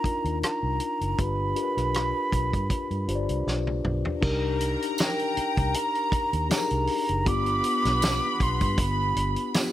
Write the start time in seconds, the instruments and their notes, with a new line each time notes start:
Already playing: tine electric piano D4 D#4 F4 A#4, flute A#5
0.03 tine electric piano D4 D#4 F4 A#4, muted fingered electric bass stroke, kick, closed hi-hat
0.24 fingered electric bass D#2, closed hi-hat
0.42 flute A#5, muted fingered electric bass stroke, cross-stick, closed hi-hat
0.63 fingered electric bass C2
0.80 closed hi-hat
1.01 fingered electric bass F#1, closed hi-hat
1.18 fingered electric bass G1, tine electric piano D4 F4 G4 B4, flute B5, kick, closed hi-hat
1.55 tine electric piano D4 F4 G4 A#4, closed hi-hat
1.63 tine electric piano B4
1.77 fingered electric bass B1, cross-stick, closed hi-hat
1.94 cross-stick, closed hi-hat
2.32 fingered electric bass B1, kick, closed hi-hat
2.53 fingered electric bass G2, kick, closed hi-hat
2.70 kick, closed hi-hat
2.91 fingered electric bass G2, closed hi-hat
3.08 fingered electric bass G1, tine electric piano D4 F4 G4 C5, closed hi-hat
3.15 tine electric piano D5
3.29 fingered electric bass C2, closed hi-hat
3.47 fingered electric bass B1, snare
3.67 high tom
3.84 fingered electric bass B1, mid tom
4.05 floor tom
4.21 fingered electric bass C2, tine electric piano D4 D#4 G4 A#4, string section A#4 A#5, kick, crash
4.60 closed hi-hat
4.82 closed hi-hat
4.98 flute G5, snare, closed hi-hat, tambourine
5.19 closed hi-hat
5.37 muted fingered electric bass stroke, closed hi-hat
5.57 fingered electric bass C2, kick, closed hi-hat
5.74 flute A#5, closed hi-hat
5.95 closed hi-hat
6.12 muted fingered electric bass stroke, kick, closed hi-hat
6.33 fingered electric bass D#2, closed hi-hat
6.49 tine electric piano D4 D#4 G4 G#4, flute A#5, muted fingered electric bass stroke, snare, closed hi-hat, tambourine
6.57 tine electric piano A#4
6.70 fingered electric bass C2, closed hi-hat
6.87 open hi-hat
7.09 fingered electric bass F#1, closed hi-hat
7.25 fingered electric bass G1, tine electric piano B3 D4 F4 G4, string section B3 B5, flute D6, kick, closed hi-hat
7.46 closed hi-hat
7.64 closed hi-hat
7.85 fingered electric bass B1, snare, closed hi-hat
8.02 snare, closed hi-hat, tambourine
8.40 fingered electric bass B1, flute C6, kick, closed hi-hat
8.61 fingered electric bass G2, kick, closed hi-hat
8.78 fingered electric bass G1, flute B5, kick, closed hi-hat
9.16 fingered electric bass G1, closed hi-hat
9.36 closed hi-hat
9.54 tine electric piano B3 D4 F4 G4, snare, closed hi-hat, tambourine